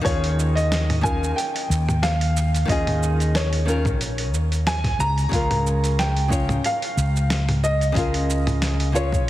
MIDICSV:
0, 0, Header, 1, 5, 480
1, 0, Start_track
1, 0, Tempo, 659341
1, 34, Time_signature, 4, 2, 24, 8
1, 6770, End_track
2, 0, Start_track
2, 0, Title_t, "Grand piano"
2, 0, Program_c, 0, 0
2, 33, Note_on_c, 0, 73, 97
2, 404, Note_on_c, 0, 75, 94
2, 416, Note_off_c, 0, 73, 0
2, 753, Note_on_c, 0, 80, 97
2, 764, Note_off_c, 0, 75, 0
2, 977, Note_off_c, 0, 80, 0
2, 991, Note_on_c, 0, 79, 88
2, 1443, Note_off_c, 0, 79, 0
2, 1475, Note_on_c, 0, 77, 98
2, 1961, Note_on_c, 0, 75, 92
2, 1969, Note_off_c, 0, 77, 0
2, 2440, Note_on_c, 0, 73, 74
2, 2452, Note_off_c, 0, 75, 0
2, 3128, Note_off_c, 0, 73, 0
2, 3401, Note_on_c, 0, 80, 104
2, 3641, Note_on_c, 0, 82, 114
2, 3644, Note_off_c, 0, 80, 0
2, 4363, Note_on_c, 0, 79, 97
2, 4379, Note_off_c, 0, 82, 0
2, 4846, Note_on_c, 0, 77, 96
2, 4853, Note_off_c, 0, 79, 0
2, 5531, Note_off_c, 0, 77, 0
2, 5559, Note_on_c, 0, 75, 100
2, 6487, Note_off_c, 0, 75, 0
2, 6519, Note_on_c, 0, 73, 81
2, 6770, Note_off_c, 0, 73, 0
2, 6770, End_track
3, 0, Start_track
3, 0, Title_t, "Nylon-string guitar"
3, 0, Program_c, 1, 24
3, 10, Note_on_c, 1, 51, 98
3, 21, Note_on_c, 1, 61, 83
3, 39, Note_on_c, 1, 65, 89
3, 55, Note_on_c, 1, 68, 106
3, 716, Note_off_c, 1, 51, 0
3, 722, Note_off_c, 1, 61, 0
3, 731, Note_off_c, 1, 65, 0
3, 737, Note_on_c, 1, 51, 81
3, 738, Note_off_c, 1, 68, 0
3, 743, Note_on_c, 1, 61, 78
3, 754, Note_on_c, 1, 65, 77
3, 758, Note_on_c, 1, 70, 89
3, 977, Note_off_c, 1, 51, 0
3, 980, Note_off_c, 1, 61, 0
3, 985, Note_off_c, 1, 65, 0
3, 987, Note_off_c, 1, 70, 0
3, 1932, Note_on_c, 1, 51, 94
3, 1948, Note_on_c, 1, 61, 85
3, 1960, Note_on_c, 1, 65, 80
3, 1980, Note_on_c, 1, 68, 107
3, 2637, Note_off_c, 1, 51, 0
3, 2645, Note_off_c, 1, 61, 0
3, 2651, Note_off_c, 1, 65, 0
3, 2660, Note_on_c, 1, 51, 80
3, 2661, Note_off_c, 1, 68, 0
3, 2670, Note_on_c, 1, 61, 77
3, 2676, Note_on_c, 1, 65, 71
3, 2684, Note_on_c, 1, 70, 88
3, 2898, Note_off_c, 1, 51, 0
3, 2903, Note_off_c, 1, 61, 0
3, 2906, Note_off_c, 1, 65, 0
3, 2910, Note_off_c, 1, 70, 0
3, 3851, Note_on_c, 1, 49, 87
3, 3866, Note_on_c, 1, 61, 84
3, 3880, Note_on_c, 1, 65, 87
3, 3896, Note_on_c, 1, 70, 95
3, 4557, Note_off_c, 1, 49, 0
3, 4564, Note_off_c, 1, 61, 0
3, 4571, Note_off_c, 1, 65, 0
3, 4574, Note_on_c, 1, 49, 75
3, 4579, Note_off_c, 1, 70, 0
3, 4580, Note_on_c, 1, 61, 74
3, 4592, Note_on_c, 1, 65, 71
3, 4596, Note_on_c, 1, 73, 94
3, 4815, Note_off_c, 1, 49, 0
3, 4818, Note_off_c, 1, 61, 0
3, 4824, Note_off_c, 1, 65, 0
3, 4826, Note_off_c, 1, 73, 0
3, 5767, Note_on_c, 1, 49, 91
3, 5781, Note_on_c, 1, 61, 84
3, 5799, Note_on_c, 1, 65, 89
3, 5814, Note_on_c, 1, 70, 102
3, 6475, Note_off_c, 1, 49, 0
3, 6481, Note_off_c, 1, 61, 0
3, 6491, Note_off_c, 1, 65, 0
3, 6496, Note_on_c, 1, 49, 76
3, 6498, Note_off_c, 1, 70, 0
3, 6502, Note_on_c, 1, 61, 72
3, 6511, Note_on_c, 1, 65, 75
3, 6520, Note_on_c, 1, 73, 89
3, 6736, Note_off_c, 1, 49, 0
3, 6739, Note_off_c, 1, 61, 0
3, 6744, Note_off_c, 1, 65, 0
3, 6748, Note_off_c, 1, 73, 0
3, 6770, End_track
4, 0, Start_track
4, 0, Title_t, "Fretless electric bass"
4, 0, Program_c, 2, 35
4, 36, Note_on_c, 2, 39, 95
4, 953, Note_off_c, 2, 39, 0
4, 1236, Note_on_c, 2, 39, 97
4, 1913, Note_off_c, 2, 39, 0
4, 1954, Note_on_c, 2, 39, 96
4, 2911, Note_off_c, 2, 39, 0
4, 2911, Note_on_c, 2, 34, 90
4, 3151, Note_off_c, 2, 34, 0
4, 3151, Note_on_c, 2, 39, 88
4, 3591, Note_off_c, 2, 39, 0
4, 3632, Note_on_c, 2, 37, 79
4, 3821, Note_off_c, 2, 37, 0
4, 3872, Note_on_c, 2, 37, 95
4, 4791, Note_off_c, 2, 37, 0
4, 5075, Note_on_c, 2, 37, 101
4, 5753, Note_off_c, 2, 37, 0
4, 5789, Note_on_c, 2, 37, 98
4, 6755, Note_off_c, 2, 37, 0
4, 6770, End_track
5, 0, Start_track
5, 0, Title_t, "Drums"
5, 35, Note_on_c, 9, 36, 121
5, 41, Note_on_c, 9, 46, 62
5, 48, Note_on_c, 9, 82, 33
5, 108, Note_off_c, 9, 36, 0
5, 113, Note_off_c, 9, 46, 0
5, 120, Note_off_c, 9, 82, 0
5, 173, Note_on_c, 9, 46, 45
5, 246, Note_off_c, 9, 46, 0
5, 288, Note_on_c, 9, 82, 81
5, 361, Note_off_c, 9, 82, 0
5, 414, Note_on_c, 9, 46, 30
5, 421, Note_on_c, 9, 82, 46
5, 487, Note_off_c, 9, 46, 0
5, 494, Note_off_c, 9, 82, 0
5, 522, Note_on_c, 9, 38, 101
5, 522, Note_on_c, 9, 46, 62
5, 529, Note_on_c, 9, 82, 34
5, 595, Note_off_c, 9, 38, 0
5, 595, Note_off_c, 9, 46, 0
5, 602, Note_off_c, 9, 82, 0
5, 654, Note_on_c, 9, 45, 69
5, 654, Note_on_c, 9, 46, 39
5, 727, Note_off_c, 9, 45, 0
5, 727, Note_off_c, 9, 46, 0
5, 753, Note_on_c, 9, 36, 106
5, 768, Note_on_c, 9, 82, 74
5, 826, Note_off_c, 9, 36, 0
5, 841, Note_off_c, 9, 82, 0
5, 900, Note_on_c, 9, 82, 46
5, 973, Note_off_c, 9, 82, 0
5, 1006, Note_on_c, 9, 46, 58
5, 1013, Note_on_c, 9, 82, 33
5, 1078, Note_off_c, 9, 46, 0
5, 1085, Note_off_c, 9, 82, 0
5, 1133, Note_on_c, 9, 46, 44
5, 1206, Note_off_c, 9, 46, 0
5, 1249, Note_on_c, 9, 82, 73
5, 1322, Note_off_c, 9, 82, 0
5, 1372, Note_on_c, 9, 45, 76
5, 1379, Note_on_c, 9, 82, 45
5, 1445, Note_off_c, 9, 45, 0
5, 1452, Note_off_c, 9, 82, 0
5, 1478, Note_on_c, 9, 38, 101
5, 1478, Note_on_c, 9, 46, 67
5, 1485, Note_on_c, 9, 82, 34
5, 1551, Note_off_c, 9, 38, 0
5, 1551, Note_off_c, 9, 46, 0
5, 1558, Note_off_c, 9, 82, 0
5, 1610, Note_on_c, 9, 46, 46
5, 1683, Note_off_c, 9, 46, 0
5, 1724, Note_on_c, 9, 82, 85
5, 1797, Note_off_c, 9, 82, 0
5, 1853, Note_on_c, 9, 46, 32
5, 1860, Note_on_c, 9, 82, 45
5, 1926, Note_off_c, 9, 46, 0
5, 1933, Note_off_c, 9, 82, 0
5, 1953, Note_on_c, 9, 36, 127
5, 1961, Note_on_c, 9, 46, 59
5, 1968, Note_on_c, 9, 82, 33
5, 2026, Note_off_c, 9, 36, 0
5, 2034, Note_off_c, 9, 46, 0
5, 2041, Note_off_c, 9, 82, 0
5, 2091, Note_on_c, 9, 45, 76
5, 2091, Note_on_c, 9, 46, 39
5, 2164, Note_off_c, 9, 45, 0
5, 2164, Note_off_c, 9, 46, 0
5, 2206, Note_on_c, 9, 82, 75
5, 2279, Note_off_c, 9, 82, 0
5, 2331, Note_on_c, 9, 46, 27
5, 2338, Note_on_c, 9, 82, 45
5, 2404, Note_off_c, 9, 46, 0
5, 2411, Note_off_c, 9, 82, 0
5, 2438, Note_on_c, 9, 38, 93
5, 2438, Note_on_c, 9, 46, 63
5, 2445, Note_on_c, 9, 82, 33
5, 2511, Note_off_c, 9, 38, 0
5, 2511, Note_off_c, 9, 46, 0
5, 2518, Note_off_c, 9, 82, 0
5, 2567, Note_on_c, 9, 46, 39
5, 2640, Note_off_c, 9, 46, 0
5, 2681, Note_on_c, 9, 82, 82
5, 2754, Note_off_c, 9, 82, 0
5, 2803, Note_on_c, 9, 36, 102
5, 2807, Note_on_c, 9, 45, 79
5, 2814, Note_on_c, 9, 82, 45
5, 2876, Note_off_c, 9, 36, 0
5, 2880, Note_off_c, 9, 45, 0
5, 2887, Note_off_c, 9, 82, 0
5, 2918, Note_on_c, 9, 46, 56
5, 2925, Note_on_c, 9, 82, 31
5, 2991, Note_off_c, 9, 46, 0
5, 2998, Note_off_c, 9, 82, 0
5, 3044, Note_on_c, 9, 46, 40
5, 3117, Note_off_c, 9, 46, 0
5, 3161, Note_on_c, 9, 82, 78
5, 3234, Note_off_c, 9, 82, 0
5, 3290, Note_on_c, 9, 46, 31
5, 3297, Note_on_c, 9, 82, 45
5, 3363, Note_off_c, 9, 46, 0
5, 3370, Note_off_c, 9, 82, 0
5, 3398, Note_on_c, 9, 38, 97
5, 3398, Note_on_c, 9, 46, 61
5, 3405, Note_on_c, 9, 82, 36
5, 3471, Note_off_c, 9, 38, 0
5, 3471, Note_off_c, 9, 46, 0
5, 3478, Note_off_c, 9, 82, 0
5, 3523, Note_on_c, 9, 36, 62
5, 3527, Note_on_c, 9, 38, 30
5, 3527, Note_on_c, 9, 45, 77
5, 3527, Note_on_c, 9, 46, 40
5, 3596, Note_off_c, 9, 36, 0
5, 3600, Note_off_c, 9, 38, 0
5, 3600, Note_off_c, 9, 45, 0
5, 3600, Note_off_c, 9, 46, 0
5, 3641, Note_on_c, 9, 82, 80
5, 3714, Note_off_c, 9, 82, 0
5, 3768, Note_on_c, 9, 46, 28
5, 3775, Note_on_c, 9, 82, 45
5, 3841, Note_off_c, 9, 46, 0
5, 3848, Note_off_c, 9, 82, 0
5, 3871, Note_on_c, 9, 36, 108
5, 3880, Note_on_c, 9, 46, 59
5, 3887, Note_on_c, 9, 82, 31
5, 3944, Note_off_c, 9, 36, 0
5, 3952, Note_off_c, 9, 46, 0
5, 3959, Note_off_c, 9, 82, 0
5, 4009, Note_on_c, 9, 45, 77
5, 4009, Note_on_c, 9, 46, 44
5, 4082, Note_off_c, 9, 45, 0
5, 4082, Note_off_c, 9, 46, 0
5, 4126, Note_on_c, 9, 82, 74
5, 4199, Note_off_c, 9, 82, 0
5, 4249, Note_on_c, 9, 46, 30
5, 4257, Note_on_c, 9, 82, 43
5, 4322, Note_off_c, 9, 46, 0
5, 4329, Note_off_c, 9, 82, 0
5, 4361, Note_on_c, 9, 38, 94
5, 4361, Note_on_c, 9, 46, 65
5, 4368, Note_on_c, 9, 82, 31
5, 4434, Note_off_c, 9, 38, 0
5, 4434, Note_off_c, 9, 46, 0
5, 4441, Note_off_c, 9, 82, 0
5, 4488, Note_on_c, 9, 46, 38
5, 4561, Note_off_c, 9, 46, 0
5, 4590, Note_on_c, 9, 36, 96
5, 4603, Note_on_c, 9, 82, 78
5, 4662, Note_off_c, 9, 36, 0
5, 4676, Note_off_c, 9, 82, 0
5, 4725, Note_on_c, 9, 45, 80
5, 4732, Note_on_c, 9, 82, 46
5, 4798, Note_off_c, 9, 45, 0
5, 4805, Note_off_c, 9, 82, 0
5, 4837, Note_on_c, 9, 46, 57
5, 4844, Note_on_c, 9, 82, 29
5, 4910, Note_off_c, 9, 46, 0
5, 4917, Note_off_c, 9, 82, 0
5, 4968, Note_on_c, 9, 46, 41
5, 5041, Note_off_c, 9, 46, 0
5, 5082, Note_on_c, 9, 82, 74
5, 5154, Note_off_c, 9, 82, 0
5, 5215, Note_on_c, 9, 82, 47
5, 5287, Note_off_c, 9, 82, 0
5, 5316, Note_on_c, 9, 38, 94
5, 5316, Note_on_c, 9, 46, 62
5, 5323, Note_on_c, 9, 82, 33
5, 5389, Note_off_c, 9, 38, 0
5, 5389, Note_off_c, 9, 46, 0
5, 5396, Note_off_c, 9, 82, 0
5, 5450, Note_on_c, 9, 45, 82
5, 5450, Note_on_c, 9, 46, 43
5, 5522, Note_off_c, 9, 45, 0
5, 5522, Note_off_c, 9, 46, 0
5, 5563, Note_on_c, 9, 82, 82
5, 5636, Note_off_c, 9, 82, 0
5, 5688, Note_on_c, 9, 46, 28
5, 5695, Note_on_c, 9, 82, 45
5, 5761, Note_off_c, 9, 46, 0
5, 5768, Note_off_c, 9, 82, 0
5, 5790, Note_on_c, 9, 36, 114
5, 5797, Note_on_c, 9, 46, 65
5, 5804, Note_on_c, 9, 82, 32
5, 5862, Note_off_c, 9, 36, 0
5, 5870, Note_off_c, 9, 46, 0
5, 5877, Note_off_c, 9, 82, 0
5, 5927, Note_on_c, 9, 46, 43
5, 6000, Note_off_c, 9, 46, 0
5, 6044, Note_on_c, 9, 82, 74
5, 6117, Note_off_c, 9, 82, 0
5, 6166, Note_on_c, 9, 45, 83
5, 6166, Note_on_c, 9, 46, 30
5, 6173, Note_on_c, 9, 82, 42
5, 6239, Note_off_c, 9, 45, 0
5, 6239, Note_off_c, 9, 46, 0
5, 6246, Note_off_c, 9, 82, 0
5, 6275, Note_on_c, 9, 38, 91
5, 6275, Note_on_c, 9, 46, 63
5, 6282, Note_on_c, 9, 82, 32
5, 6348, Note_off_c, 9, 38, 0
5, 6348, Note_off_c, 9, 46, 0
5, 6355, Note_off_c, 9, 82, 0
5, 6406, Note_on_c, 9, 46, 39
5, 6479, Note_off_c, 9, 46, 0
5, 6521, Note_on_c, 9, 82, 77
5, 6594, Note_off_c, 9, 82, 0
5, 6642, Note_on_c, 9, 36, 107
5, 6654, Note_on_c, 9, 82, 42
5, 6715, Note_off_c, 9, 36, 0
5, 6727, Note_off_c, 9, 82, 0
5, 6770, End_track
0, 0, End_of_file